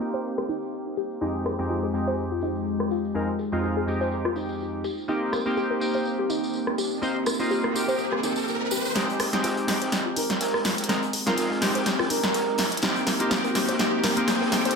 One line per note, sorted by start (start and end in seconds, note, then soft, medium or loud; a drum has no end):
0.00 1.17 A#3 medium
0.00 1.18 A#3 medium
0.00 1.17 C4 medium
0.00 1.19 C4 medium
0.00 1.17 D#4 medium
0.00 1.19 D#4 medium
0.00 8.92 G4 medium
0.00 1.19 G4 medium
0.00 4.80 C5 medium
0.00 open hi-hat medium
0.00 tambourine medium
0.14 0.20 C5 loud
0.14 tambourine medium
0.25 tambourine soft
0.38 0.42 G4 loud
0.38 cross-stick medium
0.49 0.56 D#4 loud
0.49 open hi-hat loud
0.49 tambourine medium
0.62 tambourine medium
0.73 tambourine soft
0.97 1.02 G4 medium
0.97 open hi-hat medium
0.97 tambourine medium
1.10 tambourine soft
1.21 1.56 F2 medium
1.21 1.56 G#3 medium
1.21 4.81 G#3 medium
1.21 1.56 C4 medium
1.21 1.29 D#4 medium
1.21 8.92 D#4 medium
1.21 1.56 D#4 medium
1.21 4.81 F4 medium
1.21 1.56 G4 medium
1.21 tambourine soft
1.46 1.53 G#4 medium
1.46 cross-stick medium
1.46 open hi-hat medium
1.46 tambourine medium
1.58 1.91 F2 medium
1.58 1.91 G#3 medium
1.58 1.91 C4 medium
1.58 1.92 D#4 medium
1.58 1.92 G4 loud
1.58 tambourine soft
1.70 1.74 F4 loud
1.70 tambourine soft
1.83 1.89 G#4 medium
1.93 3.12 F2 medium
1.93 3.12 G#3 medium
1.93 3.12 C4 medium
1.93 3.13 D#4 medium
1.93 3.13 G4 medium
1.93 open hi-hat medium
1.93 tambourine medium
2.07 2.13 C5 medium
2.07 tambourine soft
2.18 tambourine soft
2.32 2.35 F4 medium
2.41 2.50 D#4 loud
2.41 open hi-hat loud
2.41 tambourine medium
2.55 tambourine soft
2.66 tambourine soft
2.80 cross-stick medium
2.91 2.95 F4 medium
2.91 open hi-hat medium
2.91 tambourine medium
3.05 tambourine soft
3.14 3.28 F2 medium
3.14 3.29 G#3 medium
3.14 3.29 C4 medium
3.14 3.22 D#4 medium
3.14 3.29 D#4 medium
3.14 3.29 A#4 loud
3.14 tambourine soft
3.39 3.47 G#4 medium
3.39 open hi-hat medium
3.39 tambourine medium
3.52 3.85 F2 medium
3.52 3.85 G#3 medium
3.52 3.85 C4 medium
3.52 3.85 D#4 medium
3.52 3.85 F4 loud
3.52 tambourine soft
3.63 3.68 F4 loud
3.63 tambourine soft
3.77 3.83 G#4 medium
3.87 4.83 F2 medium
3.87 4.83 G#3 medium
3.87 4.83 C4 medium
3.87 4.83 D#4 medium
3.87 4.84 G4 medium
3.87 open hi-hat medium
3.87 tambourine medium
4.01 4.07 C5 loud
4.01 tambourine soft
4.12 tambourine soft
4.25 4.29 F4 loud
4.25 cross-stick medium
4.36 4.43 D#4 loud
4.36 open hi-hat medium
4.36 tambourine medium
4.49 tambourine soft
4.60 tambourine soft
4.84 8.92 A#3 medium
4.84 8.92 C4 medium
4.84 4.89 G4 medium
4.84 6.76 C5 medium
4.84 open hi-hat medium
4.84 tambourine medium
4.97 tambourine soft
5.08 5.43 A#3 medium
5.08 5.43 C4 medium
5.08 5.16 D#4 medium
5.08 5.43 D#4 medium
5.08 5.43 G4 medium
5.08 tambourine soft
5.08 riser medium
5.33 5.40 A#4 medium
5.33 cross-stick medium
5.33 open hi-hat loud
5.33 tambourine medium
5.46 5.78 A#3 medium
5.46 5.79 C4 medium
5.46 5.79 D#4 medium
5.46 5.79 G4 loud
5.57 5.61 G4 loud
5.57 tambourine soft
5.71 5.76 A#4 medium
5.80 6.99 A#3 medium
5.80 6.99 C4 medium
5.80 7.00 D#4 medium
5.80 7.00 G4 medium
5.80 open hi-hat medium
5.80 tambourine medium
5.94 6.01 C5 medium
5.94 tambourine medium
6.05 tambourine soft
6.19 6.22 G4 loud
6.30 6.37 D#4 loud
6.30 open hi-hat loud
6.30 tambourine medium
6.44 tambourine soft
6.54 tambourine soft
6.67 cross-stick medium
6.78 6.82 G4 medium
6.78 8.94 A#4 medium
6.78 open hi-hat medium
6.78 tambourine medium
6.91 tambourine soft
7.02 7.16 A#3 medium
7.02 7.16 C4 medium
7.02 7.10 D#4 medium
7.02 7.16 D#4 medium
7.02 7.16 C5 loud
7.02 tambourine soft
7.26 7.34 A#4 medium
7.26 cross-stick medium
7.26 open hi-hat loud
7.26 tambourine medium
7.39 7.72 A#3 medium
7.39 7.72 C4 medium
7.39 7.72 D#4 medium
7.39 7.72 F4 loud
7.39 tambourine soft
7.51 7.55 G4 loud
7.51 tambourine soft
7.64 7.70 A#4 medium
7.64 cross-stick medium
7.74 8.93 A#3 medium
7.74 8.93 C4 medium
7.74 8.93 D#4 medium
7.74 8.94 G4 medium
7.74 open hi-hat medium
7.74 tambourine medium
7.88 7.94 C5 loud
7.88 tambourine soft
7.99 tambourine soft
8.12 8.16 G4 medium
8.12 cross-stick medium
8.23 8.31 D#4 loud
8.23 open hi-hat loud
8.23 tambourine medium
8.36 tambourine soft
8.48 tambourine soft
8.71 8.76 G4 loud
8.71 open hi-hat medium
8.71 tambourine medium
8.85 tambourine medium
8.95 9.30 G#3 medium
8.95 12.55 G#3 medium
8.95 9.30 C4 medium
8.95 14.76 D#4 medium
8.95 9.03 D#4 medium
8.95 9.30 D#4 medium
8.95 12.55 F4 medium
8.95 14.76 G4 medium
8.95 9.30 G4 medium
8.95 14.76 C5 medium
8.95 snare soft
8.95 closed hi-hat medium
8.95 riser medium
9.09 closed hi-hat soft
9.20 9.27 G#4 medium
9.20 cross-stick medium
9.20 snare medium
9.20 closed hi-hat medium
9.20 open hi-hat medium
9.33 9.65 G#3 medium
9.33 9.66 C4 medium
9.33 9.66 D#4 medium
9.33 9.66 G4 loud
9.33 snare soft
9.33 closed hi-hat medium
9.44 9.49 F4 loud
9.44 snare loud
9.44 closed hi-hat medium
9.57 9.63 G#4 medium
9.57 closed hi-hat soft
9.67 10.86 G#3 medium
9.67 10.86 C4 medium
9.67 10.87 D#4 medium
9.67 10.87 G4 medium
9.67 snare soft
9.67 closed hi-hat medium
9.67 open hi-hat medium
9.81 9.88 C5 loud
9.81 snare soft
9.81 closed hi-hat medium
9.92 snare soft
9.92 closed hi-hat medium
10.06 10.09 F4 loud
10.16 10.24 D#4 loud
10.16 10.34 A#4 medium
10.16 closed hi-hat medium
10.16 open hi-hat loud
10.30 snare soft
10.30 closed hi-hat soft
10.41 10.59 A#4 medium
10.41 snare loud
10.41 closed hi-hat medium
10.54 cross-stick medium
10.54 snare soft
10.65 10.70 F4 medium
10.65 snare medium
10.65 closed hi-hat medium
10.65 open hi-hat medium
10.78 snare soft
10.78 closed hi-hat medium
10.84 closed hi-hat medium
10.89 11.03 G#3 medium
10.89 11.03 C4 medium
10.89 10.97 D#4 medium
10.89 11.03 D#4 medium
10.89 11.03 A#4 loud
10.89 snare medium
10.89 closed hi-hat medium
11.02 closed hi-hat soft
11.13 11.21 G#4 medium
11.13 closed hi-hat medium
11.13 open hi-hat loud
11.26 11.59 G#3 medium
11.26 11.59 C4 medium
11.26 11.59 D#4 medium
11.26 11.59 F4 loud
11.26 11.34 A#4 medium
11.26 snare medium
11.26 closed hi-hat medium
11.37 11.42 F4 loud
11.37 11.46 A#4 medium
11.37 snare loud
11.37 closed hi-hat medium
11.50 11.57 G#4 medium
11.50 snare soft
11.61 12.57 G#3 medium
11.61 12.57 C4 medium
11.61 12.57 D#4 medium
11.61 12.58 G4 medium
11.61 snare medium
11.61 closed hi-hat medium
11.61 open hi-hat medium
11.75 11.81 C5 loud
11.75 snare medium
11.75 closed hi-hat medium
11.86 snare medium
11.86 closed hi-hat medium
11.99 12.03 F4 loud
11.99 cross-stick medium
11.99 snare medium
12.10 12.18 D#4 loud
12.10 12.64 A#4 loud
12.10 closed hi-hat medium
12.10 open hi-hat loud
12.23 snare medium
12.23 closed hi-hat soft
12.34 snare loud
12.34 closed hi-hat medium
12.58 14.76 A#3 medium
12.58 14.76 C4 medium
12.58 12.63 G4 loud
12.58 snare medium
12.58 closed hi-hat medium
12.58 open hi-hat loud
12.71 snare soft
12.71 closed hi-hat soft
12.77 closed hi-hat medium
12.82 13.17 A#3 medium
12.82 13.17 C4 medium
12.82 12.90 D#4 medium
12.82 13.17 D#4 medium
12.82 13.17 G4 medium
12.82 snare medium
12.82 closed hi-hat medium
12.95 closed hi-hat soft
13.07 13.14 A#4 medium
13.07 snare medium
13.07 closed hi-hat medium
13.07 open hi-hat loud
13.20 13.52 A#3 medium
13.20 13.53 C4 medium
13.20 13.53 D#4 medium
13.20 13.53 G4 loud
13.20 closed hi-hat medium
13.30 13.36 G4 loud
13.30 snare loud
13.30 snare medium
13.30 closed hi-hat medium
13.44 13.50 A#4 medium
13.44 closed hi-hat soft
13.54 13.77 A#3 medium
13.54 13.78 C4 medium
13.54 13.78 D#4 medium
13.54 13.78 G4 medium
13.54 snare medium
13.54 closed hi-hat medium
13.54 open hi-hat loud
13.68 13.75 C5 medium
13.68 snare soft
13.68 closed hi-hat medium
13.79 14.14 A#3 medium
13.79 14.14 C4 medium
13.79 13.87 D#4 medium
13.79 14.14 D#4 medium
13.79 14.14 G4 medium
13.79 snare medium
13.79 closed hi-hat medium
14.04 14.11 A#4 medium
14.04 snare medium
14.04 closed hi-hat medium
14.04 open hi-hat loud
14.16 14.49 A#3 medium
14.16 14.49 C4 medium
14.16 14.50 D#4 medium
14.16 14.50 G4 medium
14.16 closed hi-hat soft
14.28 14.32 G4 medium
14.28 snare medium
14.28 snare loud
14.28 closed hi-hat medium
14.41 14.47 A#4 medium
14.41 snare medium
14.51 14.74 A#3 medium
14.51 14.74 C4 medium
14.51 14.75 D#4 medium
14.51 14.75 G4 medium
14.51 snare medium
14.51 closed hi-hat medium
14.51 open hi-hat loud
14.65 14.71 C5 loud
14.65 snare soft
14.65 closed hi-hat soft
14.71 closed hi-hat medium